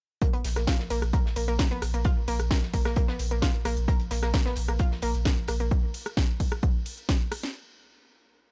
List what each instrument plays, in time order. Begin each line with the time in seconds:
0.22 synth arpeggio sound A#3, kick, closed hi-hat
0.33 sub bass A#1, synth arpeggio sound B3, closed hi-hat
0.44 sub bass A#1, snare, closed hi-hat, open hi-hat, ride
0.56 sub bass A#1, synth arpeggio sound A#3, cross-stick, snare, closed hi-hat
0.67 synth arpeggio sound F4, kick, snare, closed hi-hat
0.79 sub bass A#1, snare
0.90 sub bass A#1, synth arpeggio sound A#3, closed hi-hat, open hi-hat, ride
1.02 sub bass A#1, cross-stick, closed hi-hat
1.13 synth arpeggio sound A#4, kick, closed hi-hat
1.25 sub bass A#1, snare
1.36 sub bass A#1, synth arpeggio sound A#3, closed hi-hat, open hi-hat, ride
1.48 sub bass A#1, synth arpeggio sound A#3, closed hi-hat
1.59 synth arpeggio sound A#3, kick, snare, closed hi-hat
1.71 sub bass A#1, synth arpeggio sound B3
1.82 sub bass A#1, cross-stick, closed hi-hat, open hi-hat, ride
1.94 sub bass A#1, synth arpeggio sound A#3, closed hi-hat
2.04 synth arpeggio sound F4, kick, closed hi-hat
2.17 sub bass A#1
2.28 sub bass A#1, synth arpeggio sound A#3, closed hi-hat, open hi-hat, ride
2.39 sub bass A#1, cross-stick, closed hi-hat
2.51 synth arpeggio sound A#4, kick, snare, closed hi-hat
2.62 sub bass A#1, snare
2.73 sub bass A#1, synth arpeggio sound A#3, kick, closed hi-hat, open hi-hat, ride
2.85 sub bass A#1, synth arpeggio sound A#3, cross-stick, snare, closed hi-hat
2.96 synth arpeggio sound A#3, kick, closed hi-hat
3.08 sub bass A#1, synth arpeggio sound B3, snare
3.19 sub bass A#1, closed hi-hat, open hi-hat, ride
3.31 sub bass A#1, synth arpeggio sound A#3, closed hi-hat
3.42 synth arpeggio sound F4, kick, snare, closed hi-hat
3.54 sub bass A#1
3.65 sub bass A#1, synth arpeggio sound A#3, cross-stick, closed hi-hat, open hi-hat, ride
3.77 sub bass A#1, closed hi-hat
3.88 synth arpeggio sound A#4, kick, closed hi-hat
4.00 sub bass A#1, closed hi-hat
4.11 sub bass A#1, synth arpeggio sound A#3, snare, closed hi-hat, open hi-hat, ride
4.23 sub bass A#1, synth arpeggio sound A#3, cross-stick, snare, closed hi-hat
4.34 synth arpeggio sound A#3, kick, snare, closed hi-hat
4.46 sub bass A#1, synth arpeggio sound B3, snare
4.56 sub bass A#1, closed hi-hat, open hi-hat, ride
4.69 sub bass A#1, synth arpeggio sound A#3, cross-stick, closed hi-hat
4.79 synth arpeggio sound F4, kick, closed hi-hat
4.92 sub bass A#1, snare
5.02 sub bass A#1, synth arpeggio sound A#3, closed hi-hat, open hi-hat, ride
5.14 sub bass A#1, closed hi-hat
5.25 synth arpeggio sound A#4, kick, snare, closed hi-hat
5.37 sub bass A#1
5.48 sub bass A#1, synth arpeggio sound A#3, cross-stick, closed hi-hat, open hi-hat, ride
5.60 sub bass A#1, synth arpeggio sound A#3, closed hi-hat
5.71 kick, closed hi-hat
5.94 open hi-hat, ride
6.06 cross-stick, closed hi-hat
6.17 kick, snare, closed hi-hat
6.40 kick, open hi-hat, ride
6.52 cross-stick, closed hi-hat
6.63 kick, closed hi-hat
6.86 open hi-hat, ride
6.97 closed hi-hat
7.09 kick, snare, closed hi-hat
7.31 cross-stick, open hi-hat, ride
7.43 snare, closed hi-hat